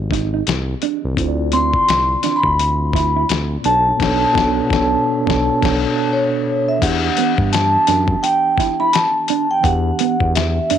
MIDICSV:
0, 0, Header, 1, 7, 480
1, 0, Start_track
1, 0, Tempo, 705882
1, 796, Time_signature, 4, 2, 24, 8
1, 7334, End_track
2, 0, Start_track
2, 0, Title_t, "Vibraphone"
2, 0, Program_c, 0, 11
2, 1042, Note_on_c, 0, 84, 101
2, 1555, Note_off_c, 0, 84, 0
2, 1563, Note_on_c, 0, 84, 71
2, 1600, Note_off_c, 0, 84, 0
2, 1606, Note_on_c, 0, 83, 91
2, 2214, Note_off_c, 0, 83, 0
2, 2485, Note_on_c, 0, 81, 99
2, 4133, Note_off_c, 0, 81, 0
2, 4167, Note_on_c, 0, 73, 69
2, 4546, Note_on_c, 0, 76, 72
2, 4559, Note_off_c, 0, 73, 0
2, 4631, Note_off_c, 0, 76, 0
2, 4640, Note_on_c, 0, 78, 89
2, 5091, Note_off_c, 0, 78, 0
2, 5118, Note_on_c, 0, 81, 101
2, 5570, Note_off_c, 0, 81, 0
2, 5596, Note_on_c, 0, 79, 106
2, 5955, Note_off_c, 0, 79, 0
2, 5983, Note_on_c, 0, 83, 105
2, 6070, Note_off_c, 0, 83, 0
2, 6076, Note_on_c, 0, 81, 87
2, 6435, Note_off_c, 0, 81, 0
2, 6465, Note_on_c, 0, 79, 88
2, 6552, Note_on_c, 0, 78, 96
2, 6560, Note_off_c, 0, 79, 0
2, 7007, Note_off_c, 0, 78, 0
2, 7041, Note_on_c, 0, 76, 87
2, 7334, Note_off_c, 0, 76, 0
2, 7334, End_track
3, 0, Start_track
3, 0, Title_t, "Clean electric guitar"
3, 0, Program_c, 1, 27
3, 84, Note_on_c, 1, 63, 74
3, 186, Note_off_c, 1, 63, 0
3, 230, Note_on_c, 1, 63, 58
3, 295, Note_off_c, 1, 63, 0
3, 563, Note_on_c, 1, 62, 69
3, 665, Note_off_c, 1, 62, 0
3, 1043, Note_on_c, 1, 60, 70
3, 1145, Note_off_c, 1, 60, 0
3, 1522, Note_on_c, 1, 62, 72
3, 1625, Note_off_c, 1, 62, 0
3, 2009, Note_on_c, 1, 64, 70
3, 2109, Note_off_c, 1, 64, 0
3, 2152, Note_on_c, 1, 64, 68
3, 2216, Note_off_c, 1, 64, 0
3, 2486, Note_on_c, 1, 62, 69
3, 2587, Note_off_c, 1, 62, 0
3, 4884, Note_on_c, 1, 59, 76
3, 4986, Note_off_c, 1, 59, 0
3, 5360, Note_on_c, 1, 62, 82
3, 5463, Note_off_c, 1, 62, 0
3, 5845, Note_on_c, 1, 64, 78
3, 5946, Note_off_c, 1, 64, 0
3, 5986, Note_on_c, 1, 64, 67
3, 6052, Note_off_c, 1, 64, 0
3, 6324, Note_on_c, 1, 62, 78
3, 6426, Note_off_c, 1, 62, 0
3, 6804, Note_on_c, 1, 59, 70
3, 6906, Note_off_c, 1, 59, 0
3, 7281, Note_on_c, 1, 62, 82
3, 7334, Note_off_c, 1, 62, 0
3, 7334, End_track
4, 0, Start_track
4, 0, Title_t, "Tine electric piano"
4, 0, Program_c, 2, 4
4, 0, Control_c, 2, 64, 127
4, 0, Note_on_c, 2, 53, 58
4, 0, Note_on_c, 2, 60, 54
4, 0, Note_on_c, 2, 67, 50
4, 0, Note_on_c, 2, 68, 51
4, 0, Note_on_c, 2, 75, 65
4, 756, Note_off_c, 2, 53, 0
4, 763, Note_off_c, 2, 60, 0
4, 769, Note_off_c, 2, 67, 0
4, 772, Note_on_c, 2, 50, 73
4, 776, Note_off_c, 2, 68, 0
4, 783, Note_off_c, 2, 75, 0
4, 786, Note_on_c, 2, 60, 69
4, 800, Note_on_c, 2, 64, 70
4, 805, Control_c, 2, 64, 0
4, 813, Note_on_c, 2, 65, 64
4, 826, Note_on_c, 2, 72, 62
4, 865, Note_off_c, 2, 72, 0
4, 870, Note_on_c, 2, 74, 84
4, 940, Control_c, 2, 64, 127
4, 2437, Note_off_c, 2, 50, 0
4, 2444, Note_off_c, 2, 60, 0
4, 2451, Note_off_c, 2, 64, 0
4, 2455, Note_on_c, 2, 47, 58
4, 2457, Note_off_c, 2, 65, 0
4, 2467, Note_on_c, 2, 59, 55
4, 2482, Note_on_c, 2, 62, 60
4, 2485, Control_c, 2, 64, 0
4, 2486, Note_off_c, 2, 74, 0
4, 2495, Note_on_c, 2, 69, 55
4, 2507, Note_on_c, 2, 73, 72
4, 2612, Control_c, 2, 64, 127
4, 2687, Note_off_c, 2, 47, 0
4, 2695, Note_on_c, 2, 47, 89
4, 2700, Note_off_c, 2, 59, 0
4, 2708, Note_on_c, 2, 59, 82
4, 2714, Note_off_c, 2, 62, 0
4, 2721, Note_off_c, 2, 69, 0
4, 2722, Note_on_c, 2, 62, 94
4, 2727, Note_off_c, 2, 73, 0
4, 2734, Note_on_c, 2, 69, 92
4, 2749, Note_on_c, 2, 73, 93
4, 2876, Note_off_c, 2, 47, 0
4, 2884, Note_off_c, 2, 59, 0
4, 2892, Note_off_c, 2, 62, 0
4, 2899, Note_off_c, 2, 69, 0
4, 2907, Note_off_c, 2, 73, 0
4, 2934, Note_on_c, 2, 47, 102
4, 2947, Note_on_c, 2, 59, 109
4, 2960, Note_on_c, 2, 62, 94
4, 2973, Note_on_c, 2, 69, 95
4, 2986, Note_on_c, 2, 73, 93
4, 3116, Note_off_c, 2, 47, 0
4, 3123, Note_off_c, 2, 59, 0
4, 3130, Note_off_c, 2, 62, 0
4, 3138, Note_off_c, 2, 69, 0
4, 3145, Note_off_c, 2, 73, 0
4, 3172, Note_on_c, 2, 47, 92
4, 3185, Note_on_c, 2, 59, 92
4, 3199, Note_on_c, 2, 62, 92
4, 3212, Note_on_c, 2, 69, 104
4, 3226, Note_on_c, 2, 73, 87
4, 3354, Note_off_c, 2, 47, 0
4, 3362, Note_off_c, 2, 59, 0
4, 3370, Note_off_c, 2, 62, 0
4, 3377, Note_off_c, 2, 69, 0
4, 3385, Note_off_c, 2, 73, 0
4, 3570, Note_on_c, 2, 47, 89
4, 3576, Note_on_c, 2, 59, 83
4, 3584, Note_on_c, 2, 62, 87
4, 3590, Note_on_c, 2, 69, 100
4, 3597, Note_on_c, 2, 73, 95
4, 3729, Note_off_c, 2, 47, 0
4, 3733, Note_off_c, 2, 59, 0
4, 3738, Note_off_c, 2, 62, 0
4, 3741, Note_off_c, 2, 69, 0
4, 3745, Note_off_c, 2, 73, 0
4, 3811, Note_on_c, 2, 47, 87
4, 3818, Note_on_c, 2, 59, 87
4, 3825, Note_on_c, 2, 62, 90
4, 3832, Note_on_c, 2, 69, 91
4, 3838, Note_on_c, 2, 73, 87
4, 3970, Note_off_c, 2, 47, 0
4, 3974, Note_off_c, 2, 59, 0
4, 3978, Note_off_c, 2, 62, 0
4, 3982, Note_off_c, 2, 69, 0
4, 3986, Note_off_c, 2, 73, 0
4, 4614, Note_on_c, 2, 52, 67
4, 4625, Note_on_c, 2, 59, 53
4, 4639, Note_on_c, 2, 62, 56
4, 4646, Control_c, 2, 64, 0
4, 4652, Note_on_c, 2, 67, 60
4, 4666, Note_on_c, 2, 76, 64
4, 4767, Control_c, 2, 64, 127
4, 6518, Note_off_c, 2, 52, 0
4, 6523, Note_off_c, 2, 59, 0
4, 6530, Note_off_c, 2, 62, 0
4, 6531, Note_on_c, 2, 52, 67
4, 6537, Note_off_c, 2, 67, 0
4, 6544, Note_off_c, 2, 76, 0
4, 6546, Note_on_c, 2, 59, 63
4, 6559, Note_on_c, 2, 62, 58
4, 6572, Note_on_c, 2, 67, 63
4, 6585, Note_on_c, 2, 78, 75
4, 7334, Note_off_c, 2, 52, 0
4, 7334, Note_off_c, 2, 59, 0
4, 7334, Note_off_c, 2, 62, 0
4, 7334, Note_off_c, 2, 67, 0
4, 7334, Note_off_c, 2, 78, 0
4, 7334, End_track
5, 0, Start_track
5, 0, Title_t, "Analog synth bass"
5, 0, Program_c, 3, 38
5, 0, Note_on_c, 3, 32, 90
5, 286, Note_off_c, 3, 32, 0
5, 323, Note_on_c, 3, 36, 91
5, 508, Note_off_c, 3, 36, 0
5, 709, Note_on_c, 3, 36, 93
5, 780, Note_off_c, 3, 36, 0
5, 799, Note_on_c, 3, 38, 95
5, 1172, Note_off_c, 3, 38, 0
5, 1284, Note_on_c, 3, 36, 84
5, 1468, Note_off_c, 3, 36, 0
5, 1658, Note_on_c, 3, 38, 92
5, 2207, Note_off_c, 3, 38, 0
5, 2243, Note_on_c, 3, 38, 92
5, 2428, Note_off_c, 3, 38, 0
5, 2483, Note_on_c, 3, 35, 90
5, 2667, Note_off_c, 3, 35, 0
5, 2723, Note_on_c, 3, 35, 103
5, 2892, Note_off_c, 3, 35, 0
5, 2961, Note_on_c, 3, 35, 99
5, 3131, Note_off_c, 3, 35, 0
5, 3201, Note_on_c, 3, 35, 94
5, 3371, Note_off_c, 3, 35, 0
5, 3586, Note_on_c, 3, 35, 93
5, 3739, Note_off_c, 3, 35, 0
5, 3828, Note_on_c, 3, 35, 103
5, 3980, Note_off_c, 3, 35, 0
5, 4640, Note_on_c, 3, 40, 105
5, 4826, Note_off_c, 3, 40, 0
5, 5021, Note_on_c, 3, 43, 92
5, 5282, Note_off_c, 3, 43, 0
5, 5361, Note_on_c, 3, 42, 88
5, 5546, Note_off_c, 3, 42, 0
5, 6558, Note_on_c, 3, 40, 117
5, 6745, Note_off_c, 3, 40, 0
5, 6941, Note_on_c, 3, 40, 104
5, 7202, Note_off_c, 3, 40, 0
5, 7282, Note_on_c, 3, 42, 53
5, 7334, Note_off_c, 3, 42, 0
5, 7334, End_track
6, 0, Start_track
6, 0, Title_t, "Muted clean electric guitar strokes"
6, 1767, Note_on_c, 9, 29, 41
6, 1835, Note_off_c, 9, 29, 0
6, 5602, Note_on_c, 9, 29, 46
6, 5670, Note_off_c, 9, 29, 0
6, 7334, End_track
7, 0, Start_track
7, 0, Title_t, "Drums"
7, 72, Note_on_c, 9, 36, 80
7, 91, Note_on_c, 9, 42, 61
7, 95, Note_on_c, 9, 38, 31
7, 140, Note_off_c, 9, 36, 0
7, 159, Note_off_c, 9, 42, 0
7, 163, Note_off_c, 9, 38, 0
7, 318, Note_on_c, 9, 42, 71
7, 333, Note_on_c, 9, 38, 107
7, 386, Note_off_c, 9, 42, 0
7, 401, Note_off_c, 9, 38, 0
7, 555, Note_on_c, 9, 42, 51
7, 623, Note_off_c, 9, 42, 0
7, 796, Note_on_c, 9, 36, 112
7, 804, Note_on_c, 9, 42, 86
7, 864, Note_off_c, 9, 36, 0
7, 872, Note_off_c, 9, 42, 0
7, 1032, Note_on_c, 9, 42, 60
7, 1100, Note_off_c, 9, 42, 0
7, 1180, Note_on_c, 9, 36, 75
7, 1248, Note_off_c, 9, 36, 0
7, 1282, Note_on_c, 9, 42, 74
7, 1293, Note_on_c, 9, 38, 107
7, 1350, Note_off_c, 9, 42, 0
7, 1361, Note_off_c, 9, 38, 0
7, 1516, Note_on_c, 9, 42, 67
7, 1533, Note_on_c, 9, 38, 35
7, 1584, Note_off_c, 9, 42, 0
7, 1601, Note_off_c, 9, 38, 0
7, 1655, Note_on_c, 9, 36, 88
7, 1723, Note_off_c, 9, 36, 0
7, 1764, Note_on_c, 9, 42, 77
7, 1832, Note_off_c, 9, 42, 0
7, 1995, Note_on_c, 9, 36, 91
7, 2015, Note_on_c, 9, 42, 62
7, 2018, Note_on_c, 9, 38, 29
7, 2063, Note_off_c, 9, 36, 0
7, 2083, Note_off_c, 9, 42, 0
7, 2086, Note_off_c, 9, 38, 0
7, 2240, Note_on_c, 9, 42, 68
7, 2255, Note_on_c, 9, 38, 108
7, 2308, Note_off_c, 9, 42, 0
7, 2323, Note_off_c, 9, 38, 0
7, 2477, Note_on_c, 9, 42, 54
7, 2545, Note_off_c, 9, 42, 0
7, 2719, Note_on_c, 9, 36, 93
7, 2720, Note_on_c, 9, 49, 73
7, 2737, Note_on_c, 9, 38, 93
7, 2787, Note_off_c, 9, 36, 0
7, 2788, Note_off_c, 9, 49, 0
7, 2805, Note_off_c, 9, 38, 0
7, 2959, Note_on_c, 9, 36, 105
7, 2976, Note_on_c, 9, 38, 103
7, 3027, Note_off_c, 9, 36, 0
7, 3044, Note_off_c, 9, 38, 0
7, 3199, Note_on_c, 9, 36, 104
7, 3216, Note_on_c, 9, 38, 104
7, 3267, Note_off_c, 9, 36, 0
7, 3284, Note_off_c, 9, 38, 0
7, 3585, Note_on_c, 9, 36, 94
7, 3603, Note_on_c, 9, 38, 92
7, 3653, Note_off_c, 9, 36, 0
7, 3671, Note_off_c, 9, 38, 0
7, 3825, Note_on_c, 9, 36, 103
7, 3826, Note_on_c, 9, 49, 79
7, 3843, Note_on_c, 9, 38, 96
7, 3893, Note_off_c, 9, 36, 0
7, 3894, Note_off_c, 9, 49, 0
7, 3911, Note_off_c, 9, 38, 0
7, 4637, Note_on_c, 9, 36, 100
7, 4639, Note_on_c, 9, 49, 97
7, 4645, Note_on_c, 9, 42, 94
7, 4705, Note_off_c, 9, 36, 0
7, 4707, Note_off_c, 9, 49, 0
7, 4713, Note_off_c, 9, 42, 0
7, 4874, Note_on_c, 9, 42, 64
7, 4942, Note_off_c, 9, 42, 0
7, 5019, Note_on_c, 9, 36, 94
7, 5087, Note_off_c, 9, 36, 0
7, 5119, Note_on_c, 9, 42, 83
7, 5131, Note_on_c, 9, 38, 107
7, 5187, Note_off_c, 9, 42, 0
7, 5199, Note_off_c, 9, 38, 0
7, 5353, Note_on_c, 9, 42, 72
7, 5370, Note_on_c, 9, 38, 39
7, 5421, Note_off_c, 9, 42, 0
7, 5438, Note_off_c, 9, 38, 0
7, 5492, Note_on_c, 9, 36, 92
7, 5560, Note_off_c, 9, 36, 0
7, 5601, Note_on_c, 9, 42, 76
7, 5669, Note_off_c, 9, 42, 0
7, 5831, Note_on_c, 9, 36, 96
7, 5847, Note_on_c, 9, 42, 61
7, 5851, Note_on_c, 9, 38, 34
7, 5899, Note_off_c, 9, 36, 0
7, 5915, Note_off_c, 9, 42, 0
7, 5919, Note_off_c, 9, 38, 0
7, 6075, Note_on_c, 9, 42, 84
7, 6089, Note_on_c, 9, 38, 116
7, 6143, Note_off_c, 9, 42, 0
7, 6157, Note_off_c, 9, 38, 0
7, 6311, Note_on_c, 9, 42, 64
7, 6379, Note_off_c, 9, 42, 0
7, 6555, Note_on_c, 9, 36, 109
7, 6561, Note_on_c, 9, 42, 86
7, 6623, Note_off_c, 9, 36, 0
7, 6629, Note_off_c, 9, 42, 0
7, 6793, Note_on_c, 9, 42, 73
7, 6861, Note_off_c, 9, 42, 0
7, 6939, Note_on_c, 9, 36, 87
7, 7007, Note_off_c, 9, 36, 0
7, 7041, Note_on_c, 9, 42, 86
7, 7053, Note_on_c, 9, 38, 116
7, 7109, Note_off_c, 9, 42, 0
7, 7121, Note_off_c, 9, 38, 0
7, 7276, Note_on_c, 9, 42, 75
7, 7334, Note_off_c, 9, 42, 0
7, 7334, End_track
0, 0, End_of_file